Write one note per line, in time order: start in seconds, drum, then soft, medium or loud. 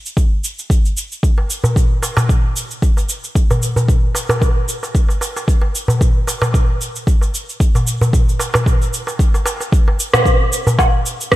0.06 cabasa soft
0.17 kick medium
0.17 cabasa soft
0.44 cabasa medium
0.59 cabasa soft
0.70 kick medium
0.70 cabasa soft
0.85 cabasa soft
0.97 cabasa medium
1.12 cabasa soft
1.23 kick medium
1.23 cabasa soft
1.38 darbuka ka soft
1.50 cabasa medium
1.64 darbuka dum medium
1.64 cabasa soft
1.76 kick loud
1.76 cabasa soft
2.03 darbuka tek soft
2.03 cabasa medium
2.17 darbuka tek medium
2.17 darbuka dum medium
2.17 cabasa soft
2.29 kick medium
2.29 cabasa soft
2.56 cabasa medium
2.71 cabasa soft
2.82 kick medium
2.82 cabasa soft
2.97 darbuka ka soft
2.97 cabasa soft
3.09 cabasa medium
3.24 cabasa soft
3.35 kick medium
3.35 cabasa soft
3.51 darbuka ka soft
3.51 darbuka dum medium
3.51 cabasa soft
3.63 cabasa medium
3.76 darbuka dum medium
3.76 cabasa soft
3.89 kick medium
3.89 cabasa soft
4.15 darbuka tek medium
4.15 cabasa medium
4.29 darbuka tek medium
4.29 darbuka dum medium
4.29 cabasa soft
4.42 kick medium
4.42 cabasa soft
4.69 cabasa medium
4.83 darbuka ka medium
4.83 cabasa soft
4.95 kick medium
4.95 cabasa soft
5.09 darbuka ka soft
5.09 cabasa soft
5.21 darbuka tek medium
5.21 cabasa medium
5.37 darbuka ka medium
5.37 cabasa soft
5.48 kick medium
5.48 cabasa soft
5.62 darbuka ka medium
5.75 cabasa medium
5.88 darbuka dum medium
5.88 cabasa soft
6.01 kick medium
6.01 cabasa soft
6.27 darbuka tek soft
6.27 cabasa medium
6.42 darbuka tek medium
6.42 darbuka dum medium
6.42 cabasa soft
6.54 kick medium
6.54 cabasa soft
6.81 cabasa medium
6.96 cabasa soft
7.07 kick medium
7.07 cabasa soft
7.21 darbuka ka soft
7.21 cabasa soft
7.35 cabasa medium
7.49 cabasa soft
7.60 kick medium
7.60 cabasa soft
7.75 darbuka ka soft
7.75 darbuka dum medium
7.75 cabasa soft
7.87 cabasa medium
8.01 darbuka dum medium
8.01 cabasa soft
8.13 kick medium
8.13 cabasa soft
8.29 cabasa soft
8.39 darbuka tek medium
8.39 cabasa medium
8.54 darbuka tek medium
8.54 darbuka dum medium
8.54 cabasa soft
8.66 kick medium
8.66 cabasa soft
8.82 cabasa soft
8.94 cabasa medium
9.07 darbuka ka medium
9.07 cabasa soft
9.19 kick medium
9.19 cabasa soft
9.34 darbuka ka medium
9.34 cabasa soft
9.46 darbuka tek medium
9.46 cabasa medium
9.61 darbuka ka soft
9.61 cabasa soft
9.72 kick loud
9.72 cabasa soft
9.88 darbuka ka medium
10.00 cabasa medium
10.14 cross-stick medium
10.14 darbuka dum medium
10.14 cabasa soft
10.14 low woodblock medium
10.26 kick loud
10.26 cabasa soft
10.53 cabasa medium
10.67 darbuka dum medium
10.67 cabasa soft
10.79 kick loud
10.79 darbuka tek medium
10.79 cabasa soft
10.79 low woodblock medium
11.06 cabasa medium
11.21 cabasa soft
11.32 kick loud
11.32 cross-stick medium
11.32 cabasa soft